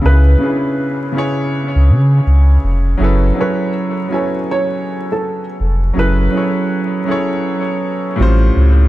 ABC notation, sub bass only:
X:1
M:4/4
L:1/16
Q:"Swing 16ths" 1/4=81
K:F#m
V:1 name="Sub bass" clef=bass
C,,2 z6 z C,, C,2 C,,2 ^E,,,2 | F,,,2 z12 ^E,,,2 | F,,,2 z8 z2 A,,,2 C,,2 |]